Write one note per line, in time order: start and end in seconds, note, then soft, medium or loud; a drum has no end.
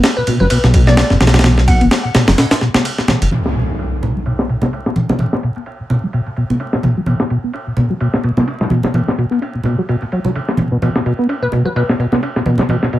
0.04 0.11 D4 medium
0.04 snare loud
0.04 ride medium
0.17 0.23 B2 medium
0.17 0.31 B4 medium
0.27 0.38 B2 loud
0.27 ride medium
0.27 low conga medium
0.40 0.47 F#1 medium
0.40 0.44 F#3 loud
0.40 0.47 B4 medium
0.50 0.61 B1 soft
0.50 0.58 B2 loud
0.50 0.59 B4 medium
0.50 ride medium
0.64 1.03 B1 medium
0.64 0.68 B2 medium
0.64 snare soft
0.74 0.82 B2 loud
0.74 kick loud
0.74 ride medium
0.87 0.96 B3 loud
0.87 0.94 D5 medium
0.87 snare soft
0.87 low conga medium
0.97 1.05 D4 medium
0.97 snare loud
0.97 ride medium
1.10 1.17 F#1 medium
1.10 1.17 B2 medium
1.10 snare soft
1.21 1.82 B1 loud
1.21 1.32 B2 loud
1.21 snare medium
1.21 ride medium
1.21 high conga medium
1.27 snare medium
1.27 ride medium
1.34 1.38 F#3 loud
1.34 snare medium
1.34 ride medium
1.34 low conga medium
1.39 snare medium
1.39 ride medium
1.44 1.52 B2 loud
1.44 snare loud
1.44 ride medium
1.44 high conga medium
1.58 1.61 B2 medium
1.58 snare soft
1.68 1.75 B2 loud
1.68 2.34 F#5 medium
1.68 kick medium
1.68 ride medium
1.81 1.87 F#1 medium
1.81 1.89 B3 loud
1.81 ride soft
1.81 high conga medium
1.91 snare loud
1.91 ride medium
2.04 2.10 B2 medium
2.15 2.26 B2 loud
2.15 snare loud
2.15 ride medium
2.15 low conga medium
2.28 2.34 F#1 medium
2.28 2.31 F#3 loud
2.28 snare loud
2.28 ride medium
2.38 2.46 B2 loud
2.38 snare loud
2.38 ride medium
2.51 2.55 B2 medium
2.51 snare loud
2.51 ride medium
2.61 2.69 B2 loud
2.61 snare soft
2.74 2.83 B3 loud
2.74 snare loud
2.74 low conga medium
2.85 ride medium
2.98 3.04 B2 medium
2.98 snare soft
3.08 3.20 B2 loud
3.08 snare loud
3.08 high conga medium
3.08 low conga medium
3.22 3.28 F#1 medium
3.22 3.25 F#3 loud
3.22 ride medium
3.31 3.40 B2 loud
3.31 ride medium
3.31 impact medium
3.31 high conga medium
3.45 snare soft
3.56 3.63 B2 medium
3.56 ride medium
3.69 3.77 B3 medium
3.79 ride medium
3.93 3.98 B2 medium
4.02 4.14 B2 medium
4.02 ride medium
4.02 low conga medium
4.16 4.19 F#3 medium
4.26 4.33 B2 loud
4.26 ride medium
4.39 4.43 B2 medium
4.39 snare soft
4.49 4.57 B2 loud
4.49 ride medium
4.62 4.71 B3 loud
4.62 snare soft
4.62 low conga medium
4.73 ride medium
4.86 4.92 B2 medium
4.86 snare soft
4.96 5.07 B2 loud
4.96 ride medium
4.96 high conga medium
5.09 5.13 F#3 medium
5.09 snare soft
5.09 low conga medium
5.19 5.27 B2 loud
5.19 ride medium
5.19 high conga medium
5.33 5.36 B2 medium
5.33 snare soft
5.43 5.50 B2 medium
5.43 ride medium
5.56 5.65 B3 medium
5.56 ride soft
5.66 ride medium
5.80 5.85 B2 medium
5.90 6.01 B2 medium
5.90 ride medium
5.90 low conga medium
6.03 6.07 F#3 medium
6.13 6.21 B2 loud
6.13 ride medium
6.26 6.30 B2 medium
6.26 ride soft
6.36 6.44 B2 loud
6.36 ride medium
6.50 6.58 B3 loud
6.50 low conga medium
6.60 6.67 D4 medium
6.60 ride medium
6.73 6.79 B2 medium
6.73 snare soft
6.83 6.95 B2 loud
6.83 ride medium
6.83 high conga medium
6.83 low conga medium
6.97 7.00 F#3 loud
7.06 7.15 B2 loud
7.06 ride medium
7.06 high conga medium
7.20 7.24 B2 medium
7.20 snare soft
7.30 7.38 B2 loud
7.30 ride medium
7.44 7.52 B3 loud
7.53 7.61 D4 medium
7.53 ride medium
7.67 7.73 B2 medium
7.77 7.88 B2 medium
7.77 ride medium
7.77 low conga medium
7.90 7.94 F#3 medium
8.00 8.08 B2 loud
8.00 ride medium
8.14 8.17 B2 medium
8.14 snare soft
8.24 8.31 B2 loud
8.24 ride medium
8.37 8.46 B3 loud
8.37 snare soft
8.37 low conga medium
8.47 8.55 D4 medium
8.47 ride medium
8.60 8.66 B2 medium
8.60 snare soft
8.70 8.82 B2 loud
8.70 ride medium
8.70 high conga medium
8.83 8.87 F#3 medium
8.83 snare soft
8.83 low conga medium
8.94 9.02 B2 loud
8.94 ride medium
8.94 high conga medium
9.07 9.11 B2 medium
9.07 snare soft
9.18 9.25 B2 loud
9.18 ride medium
9.31 9.39 B3 medium
9.31 ride soft
9.42 9.49 D4 medium
9.42 ride medium
9.55 9.60 B2 medium
9.64 9.76 B2 loud
9.64 ride medium
9.64 low conga medium
9.78 9.82 F#3 loud
9.89 9.96 B2 loud
9.89 ride medium
10.02 10.05 B2 medium
10.02 ride soft
10.12 10.19 F#3 medium
10.12 ride medium
10.25 10.31 F#3 loud
10.25 low conga medium
10.35 10.40 D3 medium
10.35 ride medium
10.48 10.52 B3 medium
10.48 snare soft
10.57 10.70 B2 medium
10.57 ride medium
10.57 high conga medium
10.57 low conga medium
10.71 10.77 B2 loud
10.82 10.89 B2 loud
10.82 ride medium
10.82 high conga medium
10.96 11.01 B2 medium
10.96 snare soft
11.06 11.13 B2 loud
11.06 ride medium
11.19 11.27 B3 medium
11.29 11.36 D4 medium
11.29 ride medium
11.42 11.48 B2 medium
11.42 11.57 B4 medium
11.52 11.63 B2 medium
11.52 ride medium
11.52 low conga medium
11.65 11.69 F#3 loud
11.65 11.72 B4 medium
11.76 11.83 B2 loud
11.76 11.84 B4 medium
11.76 ride medium
11.89 11.95 B2 medium
11.89 snare soft
11.99 12.06 B2 loud
11.99 ride medium
12.12 12.21 B3 loud
12.12 snare soft
12.12 low conga medium
12.23 12.30 D4 medium
12.23 ride medium
12.36 12.42 B2 medium
12.36 snare soft
12.46 12.57 B2 loud
12.46 ride medium
12.46 high conga medium
12.58 12.63 F#3 loud
12.58 snare soft
12.58 low conga medium
12.69 12.77 B2 loud
12.69 ride medium
12.69 high conga medium
12.83 12.88 B2 medium
12.83 snare soft
12.93 12.99 B2 medium
12.93 ride medium